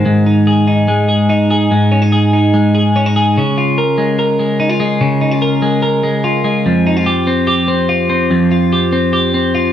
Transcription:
0.00 0.88 D#3 medium
0.00 0.26 C4 medium
0.05 1.70 G#2 medium
0.26 0.66 D#4 medium
0.47 1.08 G#4 medium
0.67 1.28 D#4 medium
0.88 2.53 G#3 medium
1.09 1.50 G#4 medium
1.29 1.91 D#4 medium
1.51 2.12 G#4 medium
1.71 3.36 G#2 medium
1.92 2.02 C#4 medium
2.02 2.32 D#4 medium
2.12 2.74 G#4 medium
2.33 2.95 D#4 medium
2.54 3.81 G#3 medium
2.75 3.16 G#4 medium
2.96 3.06 C#4 medium
3.06 3.41 D#4 medium
3.16 3.78 G#4 medium
3.37 5.00 C#3 medium
3.58 4.59 F4 medium
3.78 4.18 A#4 medium
3.98 4.39 G#3 medium
4.19 5.41 A#4 medium
4.39 4.80 G#3 soft
4.60 4.70 D#4 medium
4.70 5.21 F4 soft
4.80 5.62 G#3 medium
5.01 6.66 C#3 medium
5.21 5.31 D#4 medium
5.31 6.23 F4 medium
5.42 5.81 A#4 medium
5.62 6.03 G#3 medium
5.82 6.70 A#4 medium
6.03 6.44 G#3 medium
6.24 6.86 F4 medium
6.44 7.09 G#3 medium
6.66 8.29 F2 medium
6.87 6.97 D#4 medium
6.97 7.88 F4 medium
7.06 7.46 G4 medium
7.27 7.67 C4 medium
7.47 8.71 G4 medium
7.68 8.08 C4 medium
7.89 8.51 F4 medium
8.10 8.91 C4 medium
8.31 9.73 F2 medium
8.51 9.54 F4 medium
8.72 9.12 G4 medium
8.92 9.33 C4 medium
9.13 9.73 G4 medium
9.34 9.73 C4 medium
9.55 9.73 F4 medium

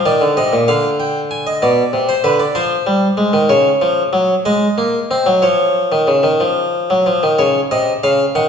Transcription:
0.06 0.21 D#3 medium
0.06 0.25 D5 medium
0.21 0.37 D3 medium
0.37 0.52 C3 medium
0.37 0.57 D#5 medium
0.53 0.68 A#2 medium
0.68 1.59 D3 medium
0.68 0.88 F5 medium
1.00 1.19 G5 medium
1.31 1.46 G#5 medium
1.47 1.62 D#5 medium
1.62 1.82 B2 medium
1.62 2.08 D5 medium
1.93 2.13 C3 medium
2.09 2.24 C5 medium
2.24 2.43 D3 medium
2.24 2.39 B4 medium
2.40 2.55 D5 medium
2.55 2.75 F3 medium
2.55 3.46 C5 medium
2.87 3.06 G3 medium
3.17 3.33 G#3 medium
3.33 3.49 D#3 medium
3.49 3.69 C#3 medium
3.49 4.42 C#5 medium
3.82 4.01 F3 medium
4.13 4.33 F#3 medium
4.45 4.66 G#3 medium
4.45 5.40 D#5 medium
4.78 4.98 A#3 medium
5.11 5.26 C4 medium
5.26 5.42 F#3 medium
5.42 5.90 F3 medium
5.42 7.02 C#5 medium
5.92 6.07 D#3 medium
6.07 6.23 C#3 medium
6.23 6.39 D#3 medium
6.40 6.88 F3 medium
6.90 7.06 F#3 medium
7.06 7.22 F3 medium
7.23 7.39 D#3 medium
7.39 7.59 C#3 medium
7.39 7.59 C#5 medium
7.71 7.91 C3 medium
7.71 7.91 D#5 medium
8.03 8.23 C#3 medium
8.03 8.23 F5 medium
8.35 8.49 D#3 medium
8.35 8.49 F#5 medium

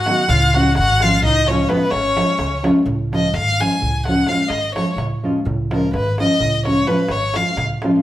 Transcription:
0.00 0.10 G#2 medium
0.00 0.29 F#4 medium
0.00 0.31 F#5 loud
0.06 0.21 D#3 medium
0.06 0.21 F#3 medium
0.06 0.22 B3 medium
0.06 0.22 D#4 medium
0.06 darbuka tek medium
0.28 0.79 C#2 loud
0.28 0.54 F4 medium
0.28 0.56 F5 medium
0.28 darbuka dum loud
0.42 darbuka tek soft
0.53 0.69 F3 medium
0.53 0.69 G#3 medium
0.53 0.70 C#4 medium
0.53 0.70 F4 medium
0.53 0.76 F#4 medium
0.53 0.77 F#5 medium
0.53 darbuka tek medium
0.75 1.24 G#1 medium
0.75 1.01 F#4 medium
0.75 1.03 F#5 loud
0.75 darbuka tek medium
1.00 1.16 F3 medium
1.00 1.17 G#3 medium
1.00 1.17 C#4 soft
1.00 1.23 F4 medium
1.00 1.17 F4 medium
1.00 1.24 F5 medium
1.00 darbuka tek medium
1.22 1.65 C#2 medium
1.22 1.46 D#4 medium
1.22 1.49 D#5 medium
1.22 darbuka dum medium
1.47 1.62 F3 medium
1.47 1.63 G#3 medium
1.47 1.71 C#4 medium
1.47 1.63 C#4 medium
1.47 1.63 F4 medium
1.47 1.70 C#5 medium
1.47 darbuka tek medium
1.68 1.84 F3 medium
1.68 1.84 G#3 medium
1.68 1.91 B3 medium
1.68 1.84 C#4 medium
1.68 1.85 F4 medium
1.68 1.92 B4 medium
1.68 darbuka tek medium
1.80 darbuka tek soft
1.90 2.21 G#1 medium
1.90 2.65 C#4 medium
1.90 2.64 C#5 medium
1.90 darbuka tek medium
2.16 2.31 F3 medium
2.16 2.31 G#3 medium
2.16 2.32 C#4 soft
2.16 2.32 F4 medium
2.16 darbuka tek medium
2.39 2.68 C#2 medium
2.39 darbuka tek medium
2.50 darbuka tek soft
2.63 2.78 F3 medium
2.63 2.78 G#3 medium
2.63 2.79 C#4 medium
2.63 2.79 F4 medium
2.63 darbuka tek medium
2.76 darbuka tek soft
2.86 3.35 C#2 medium
2.86 darbuka dum medium
3.12 3.27 F3 medium
3.12 3.27 G#3 medium
3.12 3.27 C#4 medium
3.12 3.28 F4 medium
3.12 3.35 D#5 medium
3.12 darbuka tek medium
3.24 darbuka tek soft
3.34 3.63 G#1 medium
3.34 3.62 F5 medium
3.34 darbuka tek medium
3.48 darbuka tek soft
3.60 3.74 F3 soft
3.60 3.75 G#3 soft
3.60 3.75 C#4 medium
3.60 3.75 F4 medium
3.60 4.06 G#5 medium
3.60 darbuka tek medium
3.82 4.23 C#2 medium
3.82 darbuka dum medium
4.05 4.21 F3 medium
4.05 4.22 G#3 soft
4.05 4.22 C#4 medium
4.05 4.22 F4 medium
4.05 4.30 F#5 medium
4.05 darbuka tek medium
4.27 4.42 F3 medium
4.27 4.42 G#3 medium
4.27 4.43 C#4 medium
4.27 4.43 F4 medium
4.27 4.50 F5 medium
4.27 darbuka tek medium
4.48 4.79 G#1 medium
4.48 4.75 D#5 medium
4.48 darbuka tek medium
4.75 4.90 F3 medium
4.75 4.90 G#3 soft
4.75 4.90 C#4 soft
4.75 4.91 F4 medium
4.75 4.96 C#5 medium
4.75 darbuka tek medium
4.96 5.12 C#2 medium
4.96 darbuka tek medium
4.96 darbuka dum medium
5.23 5.38 F3 medium
5.23 5.38 G#3 medium
5.23 5.38 C#4 medium
5.23 5.39 F4 medium
5.45 5.95 C#2 medium
5.45 darbuka dum medium
5.70 5.85 F3 medium
5.70 5.86 G#3 medium
5.70 5.86 C#4 medium
5.70 5.86 F4 medium
5.70 5.93 A#4 medium
5.70 darbuka tek medium
5.83 darbuka tek soft
5.93 6.22 G#1 medium
5.93 6.18 B4 medium
5.93 darbuka tek medium
6.06 darbuka tek soft
6.18 6.34 F3 medium
6.18 6.34 G#3 medium
6.18 6.34 C#4 medium
6.18 6.34 F4 medium
6.18 6.63 D#5 medium
6.18 darbuka tek medium
6.40 6.82 C#2 medium
6.40 darbuka dum medium
6.65 6.80 F3 medium
6.65 6.80 G#3 soft
6.65 6.80 C#4 medium
6.65 6.81 F4 soft
6.65 6.89 C#5 medium
6.65 darbuka tek medium
6.87 7.01 F3 medium
6.87 7.02 G#3 medium
6.87 7.02 C#4 medium
6.87 7.02 F4 medium
6.87 7.13 B4 medium
6.87 darbuka tek medium
7.08 7.38 G#1 medium
7.08 7.37 C#5 medium
7.08 darbuka tek medium
7.34 7.50 F3 medium
7.34 7.50 G#3 soft
7.34 7.50 C#4 medium
7.34 7.50 F4 medium
7.34 7.58 F5 medium
7.34 darbuka tek medium
7.56 7.72 C#2 medium
7.56 darbuka tek medium
7.56 darbuka dum medium
7.82 7.98 F3 medium
7.82 7.98 G#3 medium
7.82 7.98 C#4 medium
7.82 7.98 F4 medium
7.82 darbuka tek medium

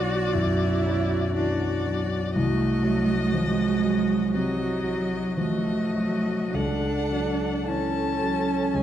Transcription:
0.00 0.31 B1 medium
0.00 1.35 E3 soft
0.00 0.86 F#3 soft
0.00 0.35 F#4 medium
0.00 1.32 F#4 medium
0.00 1.35 D5 medium
0.34 1.16 F#2 soft
0.34 1.35 E4 medium
0.86 1.67 F#3 soft
1.35 1.85 E3 soft
1.35 1.85 D4 medium
1.35 2.33 F#4 medium
1.35 2.33 D5 medium
1.87 2.36 F#3 soft
2.35 4.31 C2 medium
2.35 3.35 A3 medium
2.35 4.30 F#4 medium
2.35 4.30 D#5 medium
2.83 3.63 F#3 soft
3.34 3.84 F3 soft
3.34 4.36 G#3 medium
3.82 4.64 F#3 soft
4.34 5.17 C3 soft
4.34 5.40 F#3 medium
4.34 5.36 F#4 medium
4.34 5.37 D#5 medium
4.84 5.71 F#3 soft
5.37 5.95 F3 soft
5.37 6.54 A3 medium
5.37 6.56 F#4 medium
5.37 6.56 D#5 medium
5.94 6.54 F#3 soft
6.53 8.72 C#2 soft
6.53 7.70 D4 medium
6.53 7.67 A4 soft
6.53 7.66 F#5 soft
7.11 8.00 F#3 soft
7.66 8.22 E3 soft
7.66 8.83 C#4 medium
7.66 8.74 A4 soft
7.66 8.76 A5 medium
8.21 8.76 F#3 soft
8.74 8.83 C#2 soft
8.74 8.83 G#4 medium
8.74 8.83 G#5 medium

